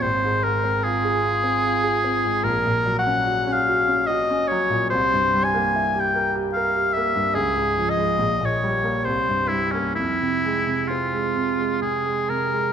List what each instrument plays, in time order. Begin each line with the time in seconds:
0.02 grand piano G#1, oboe C5
0.23 grand piano G#2
0.43 grand piano G#3, oboe A#4
0.64 grand piano C4
0.83 grand piano F4, oboe G#4
1.04 grand piano G#4
1.24 grand piano F4
1.43 grand piano C4
1.65 grand piano F4
1.83 grand piano G#4
2.04 grand piano C4
2.24 grand piano G#2
2.43 grand piano A#1, oboe A#4
2.66 grand piano A#2
2.86 grand piano F#3
2.99 oboe F#5
3.07 grand piano C#4
3.27 grand piano F#4
3.47 grand piano C#4
3.53 oboe F5
3.68 grand piano F#4
3.87 grand piano C#4
4.07 grand piano F#4, oboe D#5
4.30 grand piano C#4
4.48 grand piano F#3, oboe C#5
4.70 grand piano A#2
4.90 grand piano C2, oboe C5
5.13 grand piano G2
5.34 grand piano G3
5.44 oboe G#5
5.54 grand piano A#3
5.75 grand piano E4
5.95 grand piano G4
6.00 oboe G5
6.15 grand piano A#4
6.36 grand piano G4
6.53 grand piano A#4, oboe F5
6.76 grand piano G4
6.93 grand piano A#3, oboe E5
7.16 grand piano G2
7.34 grand piano C#2, oboe G#4
7.56 grand piano G#2
7.77 grand piano F3
7.89 oboe D#5
7.97 grand piano G#3
8.18 grand piano A#1
8.40 grand piano A#2
8.46 oboe C#5
8.63 grand piano G3
8.84 grand piano A#3
9.04 grand piano C2, oboe C5
9.29 grand piano G2
9.48 grand piano G3, oboe E4
9.72 grand piano A#3, oboe C#4
9.95 grand piano F2, oboe E4
10.22 grand piano C3
10.44 grand piano G#3
10.67 grand piano C3
10.88 grand piano C4, oboe F4
11.13 grand piano G#3
11.36 grand piano C3
11.59 grand piano G#3
11.81 grand piano C3, oboe G#4
12.06 grand piano G#3
12.29 grand piano C3, oboe A#4
12.52 grand piano G#3